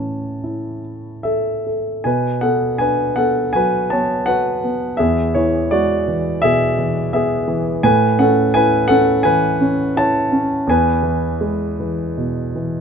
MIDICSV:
0, 0, Header, 1, 2, 480
1, 0, Start_track
1, 0, Key_signature, 3, "major"
1, 0, Tempo, 804290
1, 1222, Time_signature, 4, 2, 24, 8
1, 1222, Tempo, 745342
1, 2182, Tempo, 722892
1, 3622, Tempo, 710059
1, 6982, Tempo, 756620
1, 8332, End_track
2, 0, Start_track
2, 0, Title_t, "Grand piano"
2, 0, Program_c, 0, 0
2, 0, Control_c, 0, 64, 127
2, 0, Note_on_c, 0, 45, 53
2, 0, Note_on_c, 0, 52, 44
2, 0, Note_on_c, 0, 61, 45
2, 0, Note_on_c, 0, 73, 61
2, 0, Note_on_c, 0, 81, 77
2, 262, Note_on_c, 0, 64, 41
2, 468, Note_off_c, 0, 52, 0
2, 708, Note_off_c, 0, 81, 0
2, 721, Note_off_c, 0, 61, 0
2, 723, Note_off_c, 0, 73, 0
2, 736, Note_on_c, 0, 76, 62
2, 746, Note_on_c, 0, 69, 51
2, 986, Note_off_c, 0, 69, 0
2, 995, Note_on_c, 0, 69, 39
2, 1198, Note_off_c, 0, 45, 0
2, 1203, Note_off_c, 0, 64, 0
2, 1217, Note_off_c, 0, 69, 0
2, 1218, Note_on_c, 0, 80, 75
2, 1223, Note_on_c, 0, 47, 52
2, 1229, Control_c, 0, 64, 0
2, 1233, Note_on_c, 0, 71, 60
2, 1234, Note_off_c, 0, 76, 0
2, 1349, Control_c, 0, 64, 127
2, 1452, Note_off_c, 0, 71, 0
2, 1457, Note_on_c, 0, 78, 75
2, 1466, Note_on_c, 0, 69, 54
2, 1468, Note_off_c, 0, 80, 0
2, 1468, Note_on_c, 0, 59, 46
2, 1686, Note_off_c, 0, 69, 0
2, 1696, Note_on_c, 0, 80, 84
2, 1705, Note_off_c, 0, 78, 0
2, 1706, Note_on_c, 0, 62, 43
2, 1712, Note_on_c, 0, 71, 60
2, 1929, Note_off_c, 0, 71, 0
2, 1930, Note_off_c, 0, 59, 0
2, 1937, Note_on_c, 0, 78, 74
2, 1940, Note_on_c, 0, 59, 40
2, 1944, Note_off_c, 0, 80, 0
2, 1952, Note_on_c, 0, 69, 59
2, 2171, Note_off_c, 0, 69, 0
2, 2175, Note_on_c, 0, 80, 86
2, 2188, Note_off_c, 0, 78, 0
2, 2191, Note_on_c, 0, 54, 45
2, 2196, Note_on_c, 0, 71, 68
2, 2419, Note_off_c, 0, 71, 0
2, 2424, Note_on_c, 0, 81, 77
2, 2428, Note_off_c, 0, 59, 0
2, 2433, Note_off_c, 0, 80, 0
2, 2438, Note_on_c, 0, 59, 50
2, 2438, Note_on_c, 0, 73, 65
2, 2644, Note_off_c, 0, 62, 0
2, 2648, Note_off_c, 0, 81, 0
2, 2656, Note_off_c, 0, 73, 0
2, 2660, Note_on_c, 0, 78, 82
2, 2675, Note_on_c, 0, 66, 46
2, 2675, Note_on_c, 0, 71, 60
2, 2901, Note_off_c, 0, 59, 0
2, 2911, Note_on_c, 0, 59, 50
2, 3118, Note_off_c, 0, 47, 0
2, 3121, Note_off_c, 0, 71, 0
2, 3122, Note_off_c, 0, 54, 0
2, 3133, Note_off_c, 0, 66, 0
2, 3133, Note_on_c, 0, 76, 80
2, 3140, Note_off_c, 0, 59, 0
2, 3147, Note_on_c, 0, 68, 64
2, 3150, Note_on_c, 0, 40, 61
2, 3153, Control_c, 0, 64, 0
2, 3154, Note_off_c, 0, 78, 0
2, 3248, Control_c, 0, 64, 127
2, 3369, Note_off_c, 0, 68, 0
2, 3382, Note_on_c, 0, 73, 75
2, 3386, Note_off_c, 0, 76, 0
2, 3388, Note_on_c, 0, 52, 49
2, 3394, Note_on_c, 0, 64, 52
2, 3604, Note_off_c, 0, 73, 0
2, 3610, Note_off_c, 0, 64, 0
2, 3624, Note_on_c, 0, 74, 83
2, 3630, Note_on_c, 0, 56, 51
2, 3635, Note_on_c, 0, 66, 64
2, 3862, Note_off_c, 0, 52, 0
2, 3872, Note_on_c, 0, 52, 49
2, 4075, Note_off_c, 0, 74, 0
2, 4080, Note_off_c, 0, 66, 0
2, 4102, Note_on_c, 0, 76, 95
2, 4112, Note_on_c, 0, 47, 50
2, 4119, Note_on_c, 0, 68, 69
2, 4340, Note_off_c, 0, 52, 0
2, 4350, Note_on_c, 0, 52, 51
2, 4553, Note_off_c, 0, 56, 0
2, 4558, Note_off_c, 0, 68, 0
2, 4575, Note_off_c, 0, 76, 0
2, 4584, Note_on_c, 0, 59, 52
2, 4585, Note_on_c, 0, 76, 78
2, 4600, Note_on_c, 0, 68, 66
2, 4808, Note_off_c, 0, 52, 0
2, 4818, Note_on_c, 0, 52, 58
2, 5033, Note_off_c, 0, 40, 0
2, 5034, Note_off_c, 0, 76, 0
2, 5035, Note_off_c, 0, 47, 0
2, 5042, Note_off_c, 0, 68, 0
2, 5046, Note_off_c, 0, 59, 0
2, 5051, Note_off_c, 0, 52, 0
2, 5060, Note_on_c, 0, 45, 63
2, 5060, Note_on_c, 0, 80, 98
2, 5066, Control_c, 0, 64, 0
2, 5069, Note_on_c, 0, 71, 76
2, 5198, Control_c, 0, 64, 127
2, 5289, Note_off_c, 0, 71, 0
2, 5300, Note_on_c, 0, 78, 80
2, 5301, Note_on_c, 0, 61, 57
2, 5308, Note_off_c, 0, 80, 0
2, 5318, Note_on_c, 0, 69, 64
2, 5533, Note_off_c, 0, 69, 0
2, 5537, Note_on_c, 0, 80, 103
2, 5545, Note_on_c, 0, 64, 61
2, 5547, Note_off_c, 0, 78, 0
2, 5553, Note_on_c, 0, 71, 75
2, 5765, Note_on_c, 0, 78, 91
2, 5769, Note_off_c, 0, 71, 0
2, 5773, Note_on_c, 0, 69, 68
2, 5776, Note_off_c, 0, 61, 0
2, 5785, Note_off_c, 0, 80, 0
2, 5786, Note_on_c, 0, 61, 55
2, 5998, Note_off_c, 0, 69, 0
2, 6005, Note_on_c, 0, 80, 94
2, 6018, Note_off_c, 0, 78, 0
2, 6018, Note_on_c, 0, 71, 80
2, 6020, Note_on_c, 0, 52, 57
2, 6250, Note_off_c, 0, 61, 0
2, 6260, Note_on_c, 0, 61, 54
2, 6473, Note_off_c, 0, 71, 0
2, 6476, Note_off_c, 0, 64, 0
2, 6501, Note_on_c, 0, 64, 57
2, 6506, Note_on_c, 0, 81, 94
2, 6508, Note_off_c, 0, 80, 0
2, 6511, Note_on_c, 0, 73, 70
2, 6732, Note_off_c, 0, 61, 0
2, 6742, Note_on_c, 0, 61, 59
2, 6956, Note_off_c, 0, 52, 0
2, 6957, Note_off_c, 0, 45, 0
2, 6960, Note_off_c, 0, 73, 0
2, 6968, Note_off_c, 0, 64, 0
2, 6975, Note_off_c, 0, 61, 0
2, 6978, Note_on_c, 0, 40, 67
2, 6992, Control_c, 0, 64, 0
2, 6993, Note_on_c, 0, 80, 87
2, 6998, Note_off_c, 0, 81, 0
2, 6999, Note_on_c, 0, 71, 70
2, 7100, Control_c, 0, 64, 127
2, 7205, Note_on_c, 0, 52, 51
2, 7446, Note_on_c, 0, 56, 51
2, 7684, Note_off_c, 0, 52, 0
2, 7693, Note_on_c, 0, 52, 46
2, 7932, Note_on_c, 0, 47, 45
2, 8163, Note_off_c, 0, 52, 0
2, 8173, Note_on_c, 0, 52, 44
2, 8332, Note_off_c, 0, 40, 0
2, 8332, Note_off_c, 0, 47, 0
2, 8332, Note_off_c, 0, 52, 0
2, 8332, Note_off_c, 0, 56, 0
2, 8332, Note_off_c, 0, 71, 0
2, 8332, Note_off_c, 0, 80, 0
2, 8332, End_track
0, 0, End_of_file